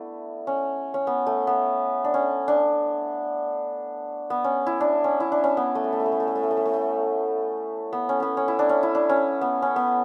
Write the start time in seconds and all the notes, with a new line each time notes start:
Already playing: A3 B3 D4 E4
0.47 C#4
0.94 C#4
1.07 B3
1.27 A3
1.47 B3
2.04 D4
2.14 C#4
2.48 D4
4.30 B3
4.44 C#4
4.67 E4
4.81 D4
5.04 C#4
5.20 E4
5.32 D4
5.44 C#4
5.57 B3
5.75 A3
5.84 A3
5.92 A3
6.00 A3
6.06 A3
6.12 A3
6.20 A3
6.28 A3
6.35 A3
6.43 A3
6.51 A3
6.57 A3
6.65 A3
6.73 A3
7.93 B3
8.09 C#4
8.20 B3 C#4
8.37 C#4
8.48 E4
8.59 D4
8.69 C#4
8.83 E4
8.95 D4
9.09 C#4
9.41 B3
9.62 C#4
9.76 B3